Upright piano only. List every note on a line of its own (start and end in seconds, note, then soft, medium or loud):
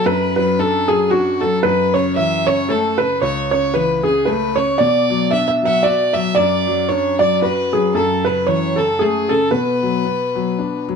0.06 1.60 F#2 medium
0.37 0.58 F#3 soft
0.59 0.88 D4 medium
0.89 1.11 F#3 soft
1.12 1.41 D4 medium
1.42 1.64 F#3 soft
1.64 3.18 F#2 medium
1.95 2.16 C#3 soft
2.18 2.46 E3 soft
2.47 2.69 C#3 soft
2.70 2.99 A3 medium
3.00 3.21 C#3 soft
3.22 4.75 C#2 medium
3.52 3.74 C#3 medium
3.75 4.04 E3 soft
4.04 4.26 C#3 soft
4.27 4.56 A3 medium
4.57 4.79 C#3 soft
4.80 6.34 B2 medium
5.10 5.32 F#3 soft
5.33 5.62 D4 soft
5.62 5.84 F#3 soft
5.84 6.13 F#4 medium
6.14 6.36 F#3 soft
6.37 7.91 F#2 medium
6.67 6.89 F#3 medium
6.89 7.19 D4 soft
7.19 7.41 F#3 soft
7.42 7.72 F#4 medium
7.73 7.95 F#3 soft
7.95 9.49 F#2 medium
8.26 8.47 C#3 soft
8.48 8.77 E3 medium
8.78 9.00 C#3 soft
9.01 9.30 A3 medium
9.31 9.52 C#3 medium
9.52 10.96 B2 medium
9.82 10.04 F#3 soft
10.05 10.34 B3 soft
10.35 10.57 F#3 soft
10.59 10.87 D4 soft
10.88 10.96 F#3 soft